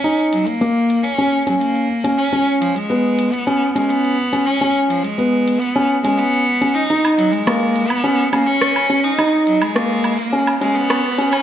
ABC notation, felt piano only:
X:1
M:4/4
L:1/8
Q:1/4=105
K:Dbmix
V:1 name="Felt piano"
E2 B,2 D D2 D | D2 C2 D D2 D | D2 C2 D D2 D | E2 B,2 D D2 D |
E2 B,2 D D2 D |]